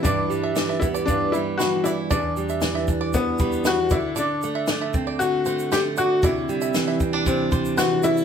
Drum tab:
SH |x-x-x-xxx-x-x-x-|x-xxx-x-x-xxx-x-|x-x-x-x-x-xxx-x-|x-xxx-x-x-xxx-xx|
SD |----oo------o---|----oo------o---|----o-------o---|----oo------o---|
BD |o-----o-o-------|o-----o-o-o---o-|------o---------|o-----o-o-o-----|